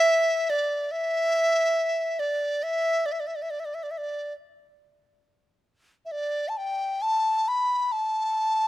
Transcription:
Already playing: E5
0.50 D5
0.92 E5
2.19 D5
2.63 E5
3.06 D5
3.12 E5
3.20 D5
3.27 E5
3.36 D5
3.42 E5
3.50 D5
3.60 E5
3.65 D5
3.74 E5
3.83 D5
3.91 E5
3.98 D5
6.05 E5
6.12 D5
6.49 A5
6.57 G5
7.02 A5
7.48 B5
7.92 A5

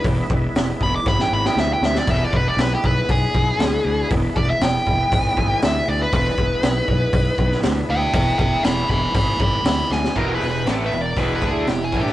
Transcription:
Already playing: G#3 B3 E4
0.04 E1, kick, open hi-hat
0.30 E1, kick
0.55 E1, snare, open hi-hat
0.81 E1 B5, kick
0.96 D6
1.06 G#1 B5, kick, snare
1.19 G5, snare
1.31 G#1 B5
1.45 G5, snare
1.55 D2, snare
1.60 E5
1.73 G5
1.81 D2, snare
1.85 E5
1.95 D5, snare
2.07 E1 G#3 B3 E4 E5, kick, open hi-hat, crash
2.24 D5
2.33 E1 B4, kick
2.48 D5
2.57 B1, snare, open hi-hat
2.61 B4
2.75 G4
2.84 B1 B4, kick
3.08 B1 G#4, kick, open hi-hat
3.34 B1, kick
3.59 D2, snare, open hi-hat
3.85 D2
4.10 E1, kick, open hi-hat
4.36 E1 D5, kick
4.50 E5
4.60 E1 G5, snare, open hi-hat
4.86 E1, kick
5.12 G#1, kick, open hi-hat
5.37 G#1, kick
5.62 D2 E5, snare, open hi-hat
5.88 D2 D5
6.03 B4
6.13 E1 A3 C4 F4 B4, kick, open hi-hat
6.30 G#3 B3 E4
6.38 E1, kick
6.63 B1, snare, open hi-hat
6.88 B1, kick
7.13 B1, kick, open hi-hat
7.38 B1, kick
7.51 snare
7.63 D2, snare, open hi-hat
7.89 D2 E5 G5
8.13 E1 E5 G5, kick, open hi-hat
8.39 E1 E5 G5, kick
8.64 E1 G#5 B5, snare, open hi-hat
8.89 E1 G#5 B5, kick
9.14 G#1 G#5 B5, kick, open hi-hat
9.40 G#1 B5 D6, kick
9.64 D2 B5 D6, snare, open hi-hat
9.90 D2 G#5, snare
10.04 snare
10.15 E1 E2 B2 E3 E4 A#4, kick, crash
10.28 F#4 A#4
10.33 G#4 B4
10.41 E1 E2 B2, open hi-hat
10.49 G#4 B4
10.66 A1 A2 E3 A3 B4 D5, snare, open hi-hat
10.85 B4 E5
10.91 E1 E2 B2, open hi-hat
11.01 A#4 D5
11.16 E1 E2 B2 E3 G#4 B4, kick, open hi-hat
11.35 G#4 B4
11.42 D2 D3 A3 D4, kick, open hi-hat
11.51 E4 G#4
11.67 E1 E2 B2 E4 G4, snare, open hi-hat
11.84 E4 G#4
11.92 A1 A2 E3 A3, kick, open hi-hat
12.01 D4 G4
12.06 snare

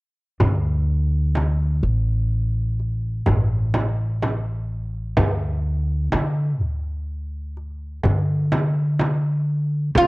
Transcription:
0.40 D2, darbuka dum, frame drum
1.35 darbuka tek, frame drum
1.83 A1, darbuka ka
2.80 darbuka ka
3.26 A1, frame drum, darbuka dum
3.74 darbuka tek, frame drum
4.22 darbuka tek, frame drum
5.17 D2, frame drum, darbuka dum
6.12 D3, darbuka tek, frame drum
6.61 D2, darbuka ka
7.57 darbuka ka
8.03 D3, frame drum, darbuka dum
8.52 darbuka tek, frame drum
8.99 darbuka tek, frame drum
9.95 D2 F4, frame drum

